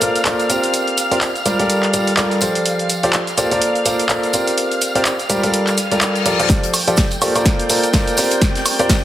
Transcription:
Already playing: string machine F5 F6
0.01 grand piano A#3 F4 A4 A#4 C5 D5, closed hi-hat, tambourine, shaker
0.15 closed hi-hat, tambourine, shaker
0.25 grand piano A#3 F4 A4 A#4 C5 D5, clap, closed hi-hat, tambourine, shaker
0.40 closed hi-hat, tambourine, shaker
0.50 grand piano C4 F4 G4 A#4 C5 D5, closed hi-hat, tambourine, shaker
0.63 closed hi-hat, tambourine, shaker
0.73 closed hi-hat, tambourine, shaker
0.88 closed hi-hat, shaker
0.97 closed hi-hat, tambourine, shaker
1.11 grand piano C4 F4 G4 A#4 C5 D5, closed hi-hat, tambourine, shaker
1.21 clap, closed hi-hat, tambourine, shaker
1.35 closed hi-hat, tambourine, shaker
1.46 grand piano G3 F4 G4 A#4 C5 D5, closed hi-hat, tambourine, shaker
1.59 grand piano G3 F4 G4 A4 A#4 D5, closed hi-hat, tambourine, shaker
1.70 closed hi-hat, tambourine, shaker
1.83 clap, closed hi-hat, shaker
1.94 grand piano G3 F4 G4 A4 A#4 D5, closed hi-hat, tambourine, shaker
2.07 closed hi-hat, tambourine, shaker
2.17 grand piano G3 F4 G4 A4 A#4 D5, clap, closed hi-hat, tambourine, shaker
2.31 closed hi-hat, tambourine, shaker
2.41 grand piano F3 F4 G4 A4 C5 D5, closed hi-hat, tambourine, shaker
2.55 closed hi-hat, tambourine, shaker
2.66 closed hi-hat, tambourine, shaker
2.79 closed hi-hat, shaker
2.90 closed hi-hat, tambourine, shaker
3.03 grand piano F3 F4 G4 A4 C5 D5, closed hi-hat, tambourine, shaker
3.13 clap, closed hi-hat, tambourine, shaker
3.27 closed hi-hat, tambourine, shaker
3.38 grand piano A#3 F4 G4 A4 C5 D5, closed hi-hat, tambourine, shaker
3.51 grand piano A#3 F4 A4 A#4 C5 D5, closed hi-hat, tambourine, shaker
3.62 closed hi-hat, tambourine, shaker
3.75 closed hi-hat, shaker
3.86 grand piano A#3 F4 A4 A#4 C5 D5, closed hi-hat, tambourine, shaker
3.99 closed hi-hat, tambourine, shaker
4.09 grand piano A#3 F4 A4 A#4 C5 D5, clap, closed hi-hat, tambourine, shaker
4.23 closed hi-hat, tambourine, shaker
4.33 grand piano C4 F4 G4 A#4 C5 D5, closed hi-hat, tambourine, shaker
4.47 closed hi-hat, tambourine, shaker
4.58 closed hi-hat, tambourine, shaker
4.71 closed hi-hat, tambourine, shaker
4.81 closed hi-hat, tambourine, shaker
4.95 grand piano C4 F4 G4 A#4 C5 D5, closed hi-hat, tambourine, shaker
5.05 clap, closed hi-hat, tambourine, shaker
5.19 closed hi-hat, tambourine, shaker
5.30 grand piano G3 F4 G4 A#4 C5 D5, closed hi-hat, tambourine, shaker
5.43 grand piano G3 F4 G4 A4 A#4 D5, closed hi-hat, tambourine, shaker
5.54 closed hi-hat, tambourine, reverse cymbal, shaker
5.67 clap, closed hi-hat, tambourine, shaker
5.77 closed hi-hat, tambourine, shaker
5.91 grand piano G3 F4 G4 A4 A#4 D5, closed hi-hat, tambourine, shaker
6.01 clap, closed hi-hat, tambourine, shaker
6.16 closed hi-hat, tambourine, shaker
6.25 grand piano F3 F4 G4 A4 A#4 D5, closed hi-hat, tambourine, shaker
6.39 grand piano F3 F4 G4 A4 C5 D5, closed hi-hat, tambourine, shaker
6.50 string machine G5 G6, kick, snare, closed hi-hat, tambourine, riser, shaker
6.63 closed hi-hat, shaker
6.74 open hi-hat, tambourine, high woodblock, shaker
6.87 grand piano F3 F4 G4 A4 C5 D5, closed hi-hat, tambourine, shaker
6.97 kick, snare, closed hi-hat, tambourine, shaker
7.11 closed hi-hat, tambourine, shaker
7.22 grand piano A#3 F4 G4 A4 C5 D5, open hi-hat, tambourine, high woodblock, shaker
7.35 grand piano A#3 F4 A4 A#4 C5 D5, closed hi-hat, tambourine, high woodblock, shaker
7.46 kick, snare, closed hi-hat, tambourine, shaker
7.59 closed hi-hat, shaker
7.69 grand piano A#3 F4 A4 A#4 C5 D5, open hi-hat, tambourine, shaker
7.83 closed hi-hat, tambourine, shaker
7.93 grand piano A#3 F4 A4 A#4 C5 D5, kick, snare, closed hi-hat, tambourine, shaker
8.07 closed hi-hat, tambourine, shaker
8.17 grand piano C4 F4 G4 A#4 C5 D5, snare, open hi-hat, tambourine, shaker
8.30 closed hi-hat, tambourine, shaker
8.41 kick, snare, closed hi-hat, tambourine, shaker
8.55 snare, closed hi-hat, shaker
8.66 open hi-hat, tambourine, high woodblock, shaker
8.79 grand piano C4 F4 G4 A#4 C5 D5, closed hi-hat, tambourine, shaker
8.89 kick, snare, closed hi-hat, tambourine, shaker

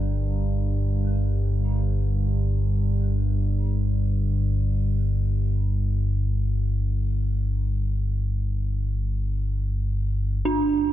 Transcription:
Already playing: synth drone G1 G2, synth bell D4 A#4
10.44 synth drone G1 G2, ambient pad G3, synth bell D4

